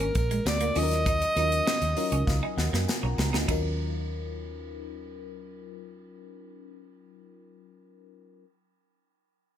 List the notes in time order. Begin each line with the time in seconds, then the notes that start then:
Already playing: G#3 A#3 C#4 D4 F4 A#4
0.00 C#4, closed hi-hat
0.15 A#1 A#4, muted clean electric guitar stroke, kick, closed hi-hat, tambourine
0.31 G#3, closed hi-hat
0.46 D2 D5, muted clean electric guitar stroke, snare, tambourine
0.60 A#3, closed hi-hat
0.75 D#2 F#3 C#4 D#4 F4 A4 D#5, open hi-hat, tambourine
0.83 A#4
0.91 snare, closed hi-hat, tambourine
1.06 D#4, kick, closed hi-hat, tambourine
1.22 muted clean electric guitar stroke, closed hi-hat, tambourine
1.35 D#2 F#3 C#4 D#4 F4 A#4, closed hi-hat, tambourine
1.52 closed hi-hat, tambourine
1.67 C#4, snare, tambourine
1.82 D#2, muted clean electric guitar stroke, closed hi-hat, tambourine
1.96 F#3 C#4 D#4 F4 A#4 D#5, open hi-hat, tambourine
2.12 C#2 C#4, closed hi-hat
2.27 C#2 F5, kick, snare, tambourine
2.43 D#4 G#5
2.57 D#2 F#5, muted clean electric guitar stroke, snare, tambourine
2.73 F#2 A#3, snare
2.88 G#5, snare, tambourine
3.03 B1 C#4 A#5
3.18 C#2 A#5, muted clean electric guitar stroke, snare, tambourine
3.33 D2 D#4, snare
3.46 D#2 F#3 C#4 D#4 F4, kick, ride bell, tambourine
3.51 A#4